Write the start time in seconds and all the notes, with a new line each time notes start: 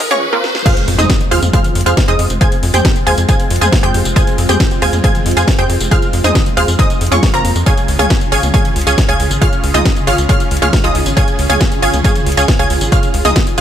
Already playing: F2 F3 C4 G#4, riser
0.00 kick, open hi-hat
0.11 C#4 F4 G#4 C#5 C#6, kick, mid tom
0.33 A#3 C4 F4 A#4
0.44 snare
0.55 snare
0.66 G#3 C4 F4 G#4 C5 F5 F6, kick, closed hi-hat, tambourine, crash, impact
0.77 closed hi-hat, tambourine
0.88 F2, open hi-hat
0.98 F2 D#4 G#4 C5 D#5 D#6, closed hi-hat, mid tom, tambourine
1.10 kick, snare, closed hi-hat, tambourine
1.21 closed hi-hat, tambourine
1.31 D#2 F4 G#4 C5 F5 F6, open hi-hat
1.42 F2, closed hi-hat, mid tom, tambourine
1.53 F4 G#4 C5 F5 F6, kick, closed hi-hat, mid tom, tambourine
1.64 closed hi-hat, tambourine
1.75 F2, open hi-hat
1.81 closed hi-hat
1.86 F2 F4 G#4 C5 F5 F6, closed hi-hat, tambourine
1.97 kick, snare, closed hi-hat, tambourine
2.08 F2 D#4 G#4 C5 D#5 D#6, closed hi-hat, tambourine
2.19 F2, open hi-hat
2.30 F1, closed hi-hat, tambourine
2.41 G#4 C5 F5 G#5 G#6, kick, closed hi-hat, tambourine
2.52 closed hi-hat, tambourine
2.63 F2, open hi-hat
2.74 F2 G4 G#4 C5 G5 G6, closed hi-hat, mid tom, tambourine
2.85 kick, snare, closed hi-hat, tambourine
2.96 closed hi-hat, tambourine
3.07 D#2 G#4 C5 F5 G#5 G#6, open hi-hat
3.18 F2, closed hi-hat, tambourine
3.29 G#4 C5 F5 G#5 G#6, kick, closed hi-hat, tambourine
3.40 closed hi-hat, tambourine
3.50 F2, open hi-hat
3.56 closed hi-hat
3.61 F2 G#4 C5 F5 G#5 G#6, mid tom, tambourine
3.72 kick, snare, open hi-hat, mid tom, tambourine
3.83 F2 G4 G#4 C5 G5 G6, closed hi-hat, tambourine
3.94 F2, open hi-hat
4.05 F1, closed hi-hat, tambourine
4.16 G#4 C5 F5 G#5 G#6, kick, closed hi-hat, tambourine
4.27 closed hi-hat, tambourine
4.38 F2, open hi-hat
4.49 F2 G4 G#4 C5 G5 G6, closed hi-hat, mid tom, tambourine
4.60 kick, snare, closed hi-hat, tambourine
4.71 closed hi-hat, tambourine
4.82 D#2 G#4 C5 F5 G#5 G#6, open hi-hat
4.93 F2, closed hi-hat, mid tom, tambourine
5.04 G#4 C5 F5 G#5 G#6, kick, closed hi-hat, mid tom, tambourine
5.15 closed hi-hat, tambourine
5.26 F2, open hi-hat
5.31 closed hi-hat
5.37 F2 G#4 C5 F5 G#5 G#6, closed hi-hat, tambourine
5.48 kick, snare, closed hi-hat, tambourine
5.58 F2 G4 G#4 C5 G5 G6, closed hi-hat, tambourine
5.69 F2, open hi-hat
5.80 F1, closed hi-hat, tambourine
5.91 F4 G#4 C5 F5 F6, kick, closed hi-hat, tambourine
6.02 closed hi-hat, tambourine
6.13 F2, open hi-hat
6.24 F2 D#4 G#4 C5 D#5 D#6, closed hi-hat, mid tom, tambourine
6.35 kick, snare, closed hi-hat, tambourine
6.46 closed hi-hat, tambourine
6.57 D#2 F4 G#4 C5 F5 F6, open hi-hat
6.68 F2, closed hi-hat, tambourine
6.79 D#4 G#4 C5 D#5 D#6, kick, closed hi-hat, tambourine
6.90 closed hi-hat, tambourine
7.01 F2, open hi-hat
7.07 closed hi-hat
7.12 F2 C#4 F4 G#4 C#5 C#6, closed hi-hat, mid tom, tambourine
7.23 kick, snare, open hi-hat, mid tom, tambourine
7.34 F1 A#3 C4 F4 A#4 A#5, closed hi-hat, tambourine
7.45 F2, open hi-hat
7.56 F2, closed hi-hat, tambourine
7.66 C#3 C#4 F4 G#4 C#5 F5 G#5 G#6, kick, closed hi-hat, tambourine
7.77 closed hi-hat, tambourine
7.88 C#2, open hi-hat
7.99 C#2 G#4 C#5 F5 G#5 G#6, closed hi-hat, mid tom, tambourine
8.10 kick, snare, closed hi-hat, tambourine
8.21 closed hi-hat, tambourine
8.32 G#1 G#4 C#5 F5 G#5 G#6, open hi-hat
8.43 C#2, closed hi-hat, mid tom, tambourine
8.54 G#4 C#5 F5 G#5 G#6, kick, closed hi-hat, mid tom, tambourine
8.65 closed hi-hat, tambourine
8.76 C#2, open hi-hat
8.81 closed hi-hat
8.87 C#2 G#4 C#5 F5 G#5 G#6, closed hi-hat, tambourine
8.98 kick, snare, closed hi-hat, tambourine
9.08 C#2 G#4 C#5 F5 G#5 G#6, closed hi-hat, tambourine
9.20 C#2, open hi-hat
9.31 G#1, closed hi-hat, tambourine
9.41 F4 G#4 C#5 F5 F6, kick, closed hi-hat, tambourine
9.53 closed hi-hat, tambourine
9.63 C#2, open hi-hat
9.74 C#2 D#4 F4 G#4 D#5 D#6, closed hi-hat, mid tom, tambourine
9.85 kick, snare, closed hi-hat, tambourine
9.96 closed hi-hat, tambourine
10.07 G#1 F4 G#4 C#5 F5 F6, open hi-hat
10.18 C#2, closed hi-hat, tambourine
10.29 F4 G#4 C#5 F5 F6, kick, closed hi-hat, tambourine
10.40 closed hi-hat, tambourine
10.51 C#2, open hi-hat
10.57 closed hi-hat
10.62 C#2 F4 G#4 C#5 F5 F6, closed hi-hat, mid tom, tambourine
10.73 kick, snare, open hi-hat, mid tom, tambourine
10.84 C#2 D#4 F4 G#4 D#5 D#6, closed hi-hat, tambourine
10.95 C#2, open hi-hat
11.06 G#1, closed hi-hat, tambourine
11.17 G#4 C#5 F5 G#5 G#6, kick, closed hi-hat, tambourine
11.28 closed hi-hat, tambourine
11.39 C#2, open hi-hat
11.50 C#2 G#4 C#5 F5 G#5 G#6, closed hi-hat, mid tom, tambourine
11.61 kick, snare, closed hi-hat, tambourine
11.72 closed hi-hat, tambourine
11.82 G#1 G#4 C#5 F5 G#5 G#6, open hi-hat
11.94 C#2, closed hi-hat, mid tom, tambourine
12.04 G#4 C#5 F5 G#5 G#6, kick, closed hi-hat, mid tom, tambourine
12.15 closed hi-hat, tambourine
12.26 C#2, open hi-hat
12.32 closed hi-hat
12.37 C#2 G#4 C#5 F5 G#5 G#6, closed hi-hat, tambourine
12.48 kick, snare, closed hi-hat, tambourine
12.59 C#2 G#4 C#5 F5 G#5 G#6, closed hi-hat, tambourine
12.70 C#2, open hi-hat
12.81 G#1, closed hi-hat, tambourine
12.92 F4 G#4 C#5 F5 F6, kick, closed hi-hat, tambourine
13.03 closed hi-hat, tambourine
13.14 C#2, open hi-hat
13.25 C#2 D#4 F4 G#4 D#5 D#6, closed hi-hat, mid tom, tambourine
13.36 kick, snare, closed hi-hat, tambourine
13.47 closed hi-hat, tambourine
13.58 open hi-hat